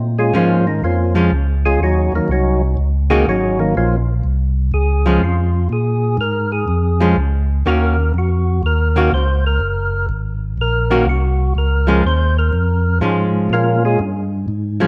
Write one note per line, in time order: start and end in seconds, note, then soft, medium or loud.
0.00 0.33 A#2 medium
0.18 0.34 G#3 medium
0.18 0.34 C#4 medium
0.18 0.34 F4 medium
0.18 0.34 G#4 medium
0.34 0.81 G#2 medium
0.34 0.63 F3 medium
0.34 0.67 F3 medium
0.34 0.63 G#3 medium
0.34 0.66 A#3 medium
0.34 0.64 C#4 medium
0.34 0.67 C#4 medium
0.34 0.66 F4 medium
0.67 0.83 D#3 medium
0.67 0.82 D#4 medium
0.83 1.30 F2 medium
0.83 1.15 F3 medium
0.83 1.15 A#3 medium
0.83 1.15 C#4 medium
0.83 1.15 F4 medium
1.15 1.30 F3 medium
1.15 1.30 G#3 medium
1.15 1.30 C#4 medium
1.31 1.78 C#2 medium
1.65 1.80 G#3 medium
1.65 1.81 C#4 medium
1.65 1.80 F4 medium
1.65 1.80 G#4 medium
1.79 2.10 D#2 medium
1.79 2.13 F#4 medium
1.83 2.13 F#3 medium
1.83 2.13 C#4 medium
1.83 2.14 D#4 medium
2.12 2.20 D#2 soft
2.12 2.30 D#3 medium
2.12 2.30 F#3 medium
2.12 2.30 A#3 medium
2.12 2.30 D#4 medium
2.28 2.76 C2 medium
2.28 2.62 F#3 medium
2.28 2.62 F#4 medium
2.32 2.62 C#4 medium
2.32 2.62 D#4 medium
2.77 3.25 C#2 medium
3.10 3.25 D#3 medium
3.10 3.26 G#3 medium
3.10 3.25 A#3 medium
3.10 3.25 C#4 medium
3.10 3.25 F#4 medium
3.10 3.26 G#4 medium
3.27 3.74 G#1 medium
3.27 3.59 F#3 medium
3.27 3.60 C#4 medium
3.27 3.58 D#4 medium
3.27 3.59 F#4 medium
3.59 3.75 D#3 medium
3.59 3.75 F#3 medium
3.59 3.75 A#3 medium
3.59 3.75 D#4 medium
3.75 4.22 A#1 medium
3.75 3.96 F3 medium
3.75 3.96 A#3 medium
3.75 3.96 C#4 medium
3.75 3.96 F4 medium
4.24 4.71 C2 medium
4.72 5.20 C#2 medium
4.72 5.19 G#4 medium
5.06 5.20 F3 medium
5.06 5.21 G#3 medium
5.06 5.21 C#4 medium
5.21 5.69 F2 medium
5.21 5.68 F4 medium
5.69 6.17 A#2 medium
5.69 6.17 G#4 medium
6.17 6.66 G#2 medium
6.17 6.52 A#4 medium
6.52 7.13 G#4 medium
6.68 7.15 F2 medium
7.00 7.15 F3 medium
7.00 7.16 G#3 medium
7.00 7.16 C#4 medium
7.16 7.64 C#2 medium
7.65 8.13 D#2 medium
7.65 7.95 D#3 medium
7.65 7.95 A#3 medium
7.65 7.95 C#4 medium
7.65 7.96 F#4 medium
7.65 8.12 A#4 medium
8.14 8.61 F2 medium
8.18 8.62 F#4 medium
8.63 9.10 D#2 medium
8.63 9.10 A#4 medium
8.96 9.10 D#3 medium
8.96 9.11 A#3 medium
8.96 9.11 C#4 medium
8.96 9.11 F#4 medium
9.12 9.59 C#2 medium
9.12 9.45 C5 medium
9.47 10.06 A#4 medium
9.60 10.08 F#1 medium
10.09 10.56 G#1 medium
10.58 11.05 A#1 medium
10.58 11.05 A#4 medium
10.91 11.05 D#3 medium
10.91 11.05 A#3 medium
10.91 11.06 C#4 medium
10.91 11.06 F#4 medium
11.06 11.54 C2 medium
11.06 11.53 F#4 medium
11.55 12.02 C#2 medium
11.55 12.02 A#4 medium
11.87 12.02 F3 medium
11.87 12.03 G#3 medium
11.87 12.03 C#4 medium
12.04 12.51 D#2 loud
12.04 12.37 C5 medium
12.39 12.99 A#4 medium
12.53 13.00 F2 medium
13.01 13.48 G#2 medium
13.01 13.76 F3 medium
13.01 13.77 G#3 medium
13.01 13.77 C#4 medium
13.50 13.97 A#2 medium
13.50 13.84 A#3 medium
13.50 13.84 C#4 medium
13.50 13.83 F4 medium
13.50 13.83 A#4 medium
13.85 14.00 G#3 medium
13.85 14.00 C#4 medium
13.85 14.00 F4 medium
13.85 14.00 G#4 medium
13.99 14.46 G2 medium
14.48 14.87 G#2 medium
14.80 14.87 F3 medium
14.80 14.87 G#3 medium
14.80 14.87 C#4 medium